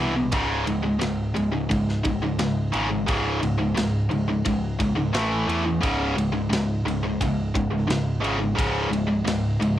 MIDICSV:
0, 0, Header, 1, 4, 480
1, 0, Start_track
1, 0, Key_signature, 4, "minor"
1, 0, Tempo, 687285
1, 228, Time_signature, 4, 2, 24, 8
1, 6838, End_track
2, 0, Start_track
2, 0, Title_t, "Distorted electric guitar"
2, 0, Program_c, 0, 30
2, 0, Note_on_c, 0, 40, 92
2, 0, Note_on_c, 0, 47, 86
2, 0, Note_on_c, 0, 52, 102
2, 87, Note_off_c, 0, 40, 0
2, 91, Note_off_c, 0, 47, 0
2, 92, Note_off_c, 0, 52, 0
2, 110, Note_on_c, 0, 47, 68
2, 113, Note_on_c, 0, 40, 52
2, 222, Note_off_c, 0, 40, 0
2, 225, Note_on_c, 0, 37, 81
2, 229, Note_off_c, 0, 47, 0
2, 233, Note_on_c, 0, 44, 87
2, 233, Note_on_c, 0, 49, 106
2, 452, Note_off_c, 0, 37, 0
2, 456, Note_off_c, 0, 44, 0
2, 456, Note_off_c, 0, 49, 0
2, 463, Note_on_c, 0, 44, 90
2, 466, Note_on_c, 0, 37, 70
2, 571, Note_off_c, 0, 44, 0
2, 573, Note_off_c, 0, 37, 0
2, 579, Note_on_c, 0, 44, 77
2, 581, Note_on_c, 0, 37, 54
2, 684, Note_off_c, 0, 37, 0
2, 686, Note_off_c, 0, 44, 0
2, 692, Note_on_c, 0, 37, 76
2, 694, Note_on_c, 0, 44, 84
2, 916, Note_off_c, 0, 37, 0
2, 917, Note_off_c, 0, 44, 0
2, 938, Note_on_c, 0, 44, 74
2, 940, Note_on_c, 0, 37, 65
2, 1052, Note_off_c, 0, 44, 0
2, 1054, Note_off_c, 0, 37, 0
2, 1060, Note_on_c, 0, 44, 68
2, 1063, Note_on_c, 0, 37, 61
2, 1172, Note_off_c, 0, 37, 0
2, 1178, Note_off_c, 0, 44, 0
2, 1181, Note_on_c, 0, 37, 85
2, 1187, Note_on_c, 0, 44, 85
2, 1400, Note_off_c, 0, 37, 0
2, 1403, Note_off_c, 0, 44, 0
2, 1421, Note_on_c, 0, 44, 69
2, 1423, Note_on_c, 0, 37, 51
2, 1542, Note_off_c, 0, 44, 0
2, 1545, Note_off_c, 0, 37, 0
2, 1550, Note_on_c, 0, 44, 81
2, 1555, Note_on_c, 0, 37, 64
2, 1658, Note_off_c, 0, 37, 0
2, 1659, Note_off_c, 0, 44, 0
2, 1667, Note_on_c, 0, 37, 72
2, 1667, Note_on_c, 0, 44, 80
2, 1883, Note_off_c, 0, 37, 0
2, 1884, Note_off_c, 0, 44, 0
2, 1901, Note_on_c, 0, 37, 79
2, 1905, Note_on_c, 0, 44, 85
2, 1910, Note_on_c, 0, 49, 100
2, 2010, Note_off_c, 0, 37, 0
2, 2012, Note_off_c, 0, 44, 0
2, 2015, Note_off_c, 0, 49, 0
2, 2023, Note_on_c, 0, 44, 64
2, 2026, Note_on_c, 0, 37, 53
2, 2132, Note_off_c, 0, 37, 0
2, 2136, Note_off_c, 0, 44, 0
2, 2140, Note_on_c, 0, 37, 80
2, 2145, Note_on_c, 0, 44, 95
2, 2147, Note_on_c, 0, 49, 89
2, 2369, Note_off_c, 0, 44, 0
2, 2370, Note_off_c, 0, 37, 0
2, 2373, Note_off_c, 0, 49, 0
2, 2377, Note_on_c, 0, 44, 84
2, 2383, Note_on_c, 0, 37, 61
2, 2492, Note_off_c, 0, 44, 0
2, 2496, Note_off_c, 0, 37, 0
2, 2500, Note_on_c, 0, 44, 78
2, 2505, Note_on_c, 0, 37, 58
2, 2608, Note_off_c, 0, 37, 0
2, 2611, Note_off_c, 0, 44, 0
2, 2617, Note_on_c, 0, 37, 71
2, 2619, Note_on_c, 0, 44, 89
2, 2839, Note_off_c, 0, 37, 0
2, 2840, Note_off_c, 0, 44, 0
2, 2858, Note_on_c, 0, 44, 70
2, 2863, Note_on_c, 0, 37, 70
2, 2980, Note_off_c, 0, 44, 0
2, 2986, Note_off_c, 0, 37, 0
2, 2988, Note_on_c, 0, 44, 66
2, 2996, Note_on_c, 0, 37, 54
2, 3097, Note_off_c, 0, 37, 0
2, 3098, Note_off_c, 0, 44, 0
2, 3106, Note_on_c, 0, 37, 70
2, 3106, Note_on_c, 0, 44, 86
2, 3323, Note_off_c, 0, 37, 0
2, 3323, Note_off_c, 0, 44, 0
2, 3345, Note_on_c, 0, 44, 59
2, 3346, Note_on_c, 0, 37, 53
2, 3452, Note_off_c, 0, 44, 0
2, 3457, Note_off_c, 0, 37, 0
2, 3460, Note_on_c, 0, 44, 73
2, 3465, Note_on_c, 0, 37, 62
2, 3578, Note_off_c, 0, 37, 0
2, 3580, Note_on_c, 0, 45, 78
2, 3583, Note_off_c, 0, 44, 0
2, 3586, Note_on_c, 0, 52, 84
2, 3587, Note_on_c, 0, 57, 93
2, 3810, Note_off_c, 0, 45, 0
2, 3813, Note_off_c, 0, 52, 0
2, 3813, Note_off_c, 0, 57, 0
2, 3820, Note_on_c, 0, 45, 78
2, 3828, Note_on_c, 0, 52, 78
2, 3829, Note_on_c, 0, 57, 91
2, 3930, Note_off_c, 0, 45, 0
2, 3934, Note_off_c, 0, 52, 0
2, 3934, Note_off_c, 0, 57, 0
2, 3944, Note_on_c, 0, 52, 61
2, 3946, Note_on_c, 0, 45, 60
2, 4053, Note_off_c, 0, 45, 0
2, 4055, Note_off_c, 0, 52, 0
2, 4055, Note_on_c, 0, 37, 85
2, 4057, Note_on_c, 0, 44, 93
2, 4066, Note_on_c, 0, 49, 104
2, 4287, Note_off_c, 0, 37, 0
2, 4289, Note_off_c, 0, 44, 0
2, 4293, Note_off_c, 0, 49, 0
2, 4301, Note_on_c, 0, 37, 64
2, 4301, Note_on_c, 0, 44, 77
2, 4407, Note_off_c, 0, 44, 0
2, 4411, Note_off_c, 0, 37, 0
2, 4416, Note_on_c, 0, 44, 73
2, 4419, Note_on_c, 0, 37, 60
2, 4527, Note_off_c, 0, 37, 0
2, 4531, Note_off_c, 0, 44, 0
2, 4536, Note_on_c, 0, 37, 73
2, 4539, Note_on_c, 0, 44, 75
2, 4758, Note_off_c, 0, 37, 0
2, 4760, Note_off_c, 0, 44, 0
2, 4789, Note_on_c, 0, 44, 75
2, 4792, Note_on_c, 0, 37, 66
2, 4903, Note_off_c, 0, 44, 0
2, 4907, Note_off_c, 0, 37, 0
2, 4911, Note_on_c, 0, 44, 80
2, 4916, Note_on_c, 0, 37, 61
2, 5026, Note_off_c, 0, 37, 0
2, 5028, Note_off_c, 0, 44, 0
2, 5034, Note_on_c, 0, 37, 68
2, 5036, Note_on_c, 0, 44, 81
2, 5247, Note_off_c, 0, 37, 0
2, 5248, Note_off_c, 0, 44, 0
2, 5270, Note_on_c, 0, 44, 67
2, 5273, Note_on_c, 0, 37, 55
2, 5375, Note_off_c, 0, 44, 0
2, 5383, Note_off_c, 0, 37, 0
2, 5383, Note_on_c, 0, 44, 83
2, 5391, Note_on_c, 0, 37, 65
2, 5492, Note_off_c, 0, 37, 0
2, 5493, Note_off_c, 0, 44, 0
2, 5500, Note_on_c, 0, 37, 78
2, 5501, Note_on_c, 0, 44, 84
2, 5720, Note_off_c, 0, 37, 0
2, 5720, Note_off_c, 0, 44, 0
2, 5734, Note_on_c, 0, 37, 88
2, 5743, Note_on_c, 0, 44, 94
2, 5746, Note_on_c, 0, 49, 85
2, 5846, Note_off_c, 0, 37, 0
2, 5851, Note_off_c, 0, 44, 0
2, 5853, Note_off_c, 0, 49, 0
2, 5861, Note_on_c, 0, 44, 67
2, 5863, Note_on_c, 0, 37, 61
2, 5963, Note_off_c, 0, 37, 0
2, 5969, Note_off_c, 0, 44, 0
2, 5971, Note_on_c, 0, 37, 87
2, 5977, Note_on_c, 0, 44, 95
2, 5980, Note_on_c, 0, 49, 90
2, 6205, Note_off_c, 0, 37, 0
2, 6208, Note_off_c, 0, 44, 0
2, 6209, Note_off_c, 0, 49, 0
2, 6216, Note_on_c, 0, 44, 82
2, 6219, Note_on_c, 0, 37, 62
2, 6328, Note_off_c, 0, 44, 0
2, 6331, Note_off_c, 0, 37, 0
2, 6337, Note_on_c, 0, 44, 71
2, 6340, Note_on_c, 0, 37, 57
2, 6448, Note_off_c, 0, 37, 0
2, 6451, Note_off_c, 0, 44, 0
2, 6457, Note_on_c, 0, 37, 74
2, 6460, Note_on_c, 0, 44, 82
2, 6678, Note_off_c, 0, 37, 0
2, 6679, Note_off_c, 0, 44, 0
2, 6705, Note_on_c, 0, 44, 77
2, 6708, Note_on_c, 0, 37, 58
2, 6821, Note_off_c, 0, 44, 0
2, 6825, Note_off_c, 0, 37, 0
2, 6838, End_track
3, 0, Start_track
3, 0, Title_t, "Picked electric bass"
3, 0, Program_c, 1, 34
3, 0, Note_on_c, 1, 36, 91
3, 210, Note_off_c, 1, 36, 0
3, 226, Note_on_c, 1, 25, 92
3, 446, Note_off_c, 1, 25, 0
3, 476, Note_on_c, 1, 25, 86
3, 691, Note_off_c, 1, 25, 0
3, 714, Note_on_c, 1, 25, 89
3, 930, Note_off_c, 1, 25, 0
3, 965, Note_on_c, 1, 25, 78
3, 1176, Note_off_c, 1, 25, 0
3, 1194, Note_on_c, 1, 25, 94
3, 1410, Note_off_c, 1, 25, 0
3, 1436, Note_on_c, 1, 25, 79
3, 1651, Note_off_c, 1, 25, 0
3, 1674, Note_on_c, 1, 25, 77
3, 1890, Note_off_c, 1, 25, 0
3, 1914, Note_on_c, 1, 32, 85
3, 2130, Note_off_c, 1, 32, 0
3, 2152, Note_on_c, 1, 25, 96
3, 2369, Note_off_c, 1, 25, 0
3, 2395, Note_on_c, 1, 25, 88
3, 2611, Note_off_c, 1, 25, 0
3, 2636, Note_on_c, 1, 25, 94
3, 2851, Note_off_c, 1, 25, 0
3, 2870, Note_on_c, 1, 25, 81
3, 3088, Note_off_c, 1, 25, 0
3, 3115, Note_on_c, 1, 25, 92
3, 3331, Note_off_c, 1, 25, 0
3, 3348, Note_on_c, 1, 25, 80
3, 3567, Note_off_c, 1, 25, 0
3, 3590, Note_on_c, 1, 33, 89
3, 3808, Note_off_c, 1, 33, 0
3, 3826, Note_on_c, 1, 40, 83
3, 4046, Note_off_c, 1, 40, 0
3, 4070, Note_on_c, 1, 25, 92
3, 4288, Note_off_c, 1, 25, 0
3, 4304, Note_on_c, 1, 25, 82
3, 4525, Note_off_c, 1, 25, 0
3, 4537, Note_on_c, 1, 25, 93
3, 4761, Note_off_c, 1, 25, 0
3, 4776, Note_on_c, 1, 25, 82
3, 5000, Note_off_c, 1, 25, 0
3, 5036, Note_on_c, 1, 25, 85
3, 5251, Note_off_c, 1, 25, 0
3, 5271, Note_on_c, 1, 25, 85
3, 5489, Note_off_c, 1, 25, 0
3, 5500, Note_on_c, 1, 25, 82
3, 5722, Note_off_c, 1, 25, 0
3, 5733, Note_on_c, 1, 32, 86
3, 5959, Note_off_c, 1, 32, 0
3, 5991, Note_on_c, 1, 25, 94
3, 6208, Note_off_c, 1, 25, 0
3, 6216, Note_on_c, 1, 25, 88
3, 6440, Note_off_c, 1, 25, 0
3, 6467, Note_on_c, 1, 25, 85
3, 6686, Note_off_c, 1, 25, 0
3, 6701, Note_on_c, 1, 25, 87
3, 6838, Note_off_c, 1, 25, 0
3, 6838, End_track
4, 0, Start_track
4, 0, Title_t, "Drums"
4, 222, Note_on_c, 9, 51, 97
4, 227, Note_on_c, 9, 36, 113
4, 292, Note_off_c, 9, 51, 0
4, 297, Note_off_c, 9, 36, 0
4, 468, Note_on_c, 9, 51, 64
4, 538, Note_off_c, 9, 51, 0
4, 707, Note_on_c, 9, 51, 81
4, 710, Note_on_c, 9, 38, 91
4, 777, Note_off_c, 9, 51, 0
4, 780, Note_off_c, 9, 38, 0
4, 953, Note_on_c, 9, 51, 59
4, 1022, Note_off_c, 9, 51, 0
4, 1194, Note_on_c, 9, 51, 80
4, 1195, Note_on_c, 9, 36, 81
4, 1264, Note_off_c, 9, 51, 0
4, 1265, Note_off_c, 9, 36, 0
4, 1320, Note_on_c, 9, 38, 28
4, 1390, Note_off_c, 9, 38, 0
4, 1430, Note_on_c, 9, 51, 64
4, 1434, Note_on_c, 9, 36, 82
4, 1500, Note_off_c, 9, 51, 0
4, 1504, Note_off_c, 9, 36, 0
4, 1670, Note_on_c, 9, 51, 84
4, 1673, Note_on_c, 9, 38, 103
4, 1740, Note_off_c, 9, 51, 0
4, 1742, Note_off_c, 9, 38, 0
4, 1910, Note_on_c, 9, 51, 69
4, 1980, Note_off_c, 9, 51, 0
4, 2152, Note_on_c, 9, 51, 94
4, 2156, Note_on_c, 9, 36, 109
4, 2222, Note_off_c, 9, 51, 0
4, 2226, Note_off_c, 9, 36, 0
4, 2395, Note_on_c, 9, 51, 64
4, 2465, Note_off_c, 9, 51, 0
4, 2635, Note_on_c, 9, 51, 92
4, 2637, Note_on_c, 9, 38, 97
4, 2704, Note_off_c, 9, 51, 0
4, 2707, Note_off_c, 9, 38, 0
4, 2871, Note_on_c, 9, 51, 68
4, 2941, Note_off_c, 9, 51, 0
4, 3111, Note_on_c, 9, 51, 90
4, 3114, Note_on_c, 9, 36, 85
4, 3181, Note_off_c, 9, 51, 0
4, 3184, Note_off_c, 9, 36, 0
4, 3353, Note_on_c, 9, 36, 81
4, 3353, Note_on_c, 9, 51, 70
4, 3423, Note_off_c, 9, 36, 0
4, 3423, Note_off_c, 9, 51, 0
4, 3593, Note_on_c, 9, 51, 89
4, 3596, Note_on_c, 9, 38, 108
4, 3663, Note_off_c, 9, 51, 0
4, 3665, Note_off_c, 9, 38, 0
4, 3837, Note_on_c, 9, 51, 66
4, 3907, Note_off_c, 9, 51, 0
4, 4074, Note_on_c, 9, 51, 92
4, 4075, Note_on_c, 9, 36, 103
4, 4143, Note_off_c, 9, 51, 0
4, 4144, Note_off_c, 9, 36, 0
4, 4318, Note_on_c, 9, 51, 67
4, 4388, Note_off_c, 9, 51, 0
4, 4559, Note_on_c, 9, 51, 77
4, 4562, Note_on_c, 9, 38, 112
4, 4629, Note_off_c, 9, 51, 0
4, 4632, Note_off_c, 9, 38, 0
4, 4806, Note_on_c, 9, 51, 64
4, 4876, Note_off_c, 9, 51, 0
4, 5036, Note_on_c, 9, 36, 88
4, 5041, Note_on_c, 9, 51, 78
4, 5105, Note_off_c, 9, 36, 0
4, 5111, Note_off_c, 9, 51, 0
4, 5275, Note_on_c, 9, 36, 87
4, 5280, Note_on_c, 9, 51, 64
4, 5345, Note_off_c, 9, 36, 0
4, 5350, Note_off_c, 9, 51, 0
4, 5518, Note_on_c, 9, 51, 81
4, 5521, Note_on_c, 9, 38, 109
4, 5588, Note_off_c, 9, 51, 0
4, 5591, Note_off_c, 9, 38, 0
4, 5755, Note_on_c, 9, 51, 69
4, 5825, Note_off_c, 9, 51, 0
4, 5995, Note_on_c, 9, 36, 113
4, 5998, Note_on_c, 9, 51, 88
4, 6065, Note_off_c, 9, 36, 0
4, 6068, Note_off_c, 9, 51, 0
4, 6236, Note_on_c, 9, 51, 68
4, 6306, Note_off_c, 9, 51, 0
4, 6477, Note_on_c, 9, 51, 94
4, 6480, Note_on_c, 9, 38, 107
4, 6547, Note_off_c, 9, 51, 0
4, 6549, Note_off_c, 9, 38, 0
4, 6720, Note_on_c, 9, 51, 67
4, 6790, Note_off_c, 9, 51, 0
4, 6838, End_track
0, 0, End_of_file